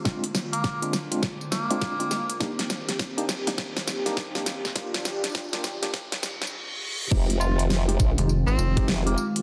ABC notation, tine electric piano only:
X:1
M:4/4
L:1/16
Q:"Swing 16ths" 1/4=102
K:Fdor
V:1 name="Tine electric piano"
[A,CDF] z4 [A,CDF] z [A,CDF] z3 [A,CDF]2 [A,CDF] z2 | [B,DEG] z4 [B,DEG] z [B,DEG] z3 [B,DEG]2 [B,DEG] z2 | [B,DFG] z4 [B,DFG] z [B,DFG] z8 | [A,CEG] z4 [A,CEG] z [A,CEG] z3 [A,CEG]2 [A,CEG] z2 |]